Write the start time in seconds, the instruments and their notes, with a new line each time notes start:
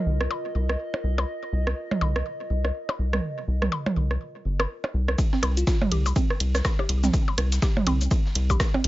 Already playing: ambient pad F4 A#4 D#5
0.06 analog synth bass C2
0.21 cross-stick
0.31 percussion blips
0.55 analog synth bass C2
0.69 cross-stick
0.94 percussion blips
1.04 analog synth bass C2
1.18 cross-stick, percussion blips
1.53 analog synth bass C2
1.67 cross-stick
1.91 mid tom, percussion blips
2.01 analog synth bass C2, percussion blips
2.16 cross-stick
2.50 analog synth bass C2
2.65 cross-stick, percussion blips
2.89 percussion blips
2.99 analog synth bass C2
3.13 cross-stick, mid tom
3.48 analog synth bass C2
3.62 cross-stick, mid tom
3.72 percussion blips
3.86 mid tom, percussion blips
3.96 analog synth bass C2
4.11 cross-stick
4.45 analog synth bass G1
4.60 cross-stick, percussion blips
4.84 percussion blips
4.94 analog synth bass C2
5.08 cross-stick, percussion blips
5.18 kick, ride, cabasa
5.33 synth arpeggio sound C4, snare
5.43 analog synth bass C2, cross-stick, closed hi-hat, ride, percussion blips
5.57 fm electric piano F4, closed hi-hat, cabasa
5.67 fm electric piano F4, kick, snare, ride, cabasa
5.82 mid tom, percussion blips
5.92 analog synth bass C2, synth arpeggio sound G4, closed hi-hat, ride
6.06 percussion blips, cabasa
6.16 synth arpeggio sound C4, kick, ride, cabasa
6.30 cross-stick
6.40 analog synth bass C2, closed hi-hat, ride
6.55 cross-stick, snare, cabasa, percussion blips
6.65 kick, cross-stick, snare, ride, percussion blips, cabasa
6.79 synth arpeggio sound G4, percussion blips
6.89 analog synth bass C2, closed hi-hat, ride
7.04 synth arpeggio sound C4, snare, mid tom, cabasa
7.14 kick, ride, cabasa
7.28 percussion blips
7.38 analog synth bass C2, cross-stick, closed hi-hat, ride
7.52 snare, closed hi-hat, cabasa
7.62 synth arpeggio sound G4, kick, snare, ride, cabasa
7.77 mid tom, percussion blips
7.87 analog synth bass C2, synth arpeggio sound C4, closed hi-hat, ride, percussion blips
8.01 cabasa
8.11 kick, ride, cabasa
8.26 snare
8.35 analog synth bass C2, closed hi-hat, ride
8.50 synth arpeggio sound G4, kick, percussion blips, cabasa
8.60 kick, cross-stick, snare, ride, cabasa
8.74 synth arpeggio sound C4, percussion blips
8.84 analog synth bass C2, closed hi-hat, ride